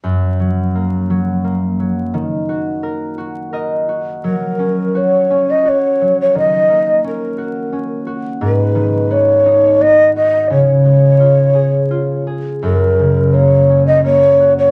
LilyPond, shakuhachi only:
\new Staff \with { instrumentName = "Shakuhachi" } { \time 3/4 \key fis \major \tempo 4 = 86 r2. | r2. | ais'4 cis''8. dis''16 cis''8. cis''16 | dis''4 ais'4. r8 |
b'4 cis''4 dis''8 dis''8 | cis''2~ cis''8 r8 | ais'4 cis''8. dis''16 cis''8. cis''16 | }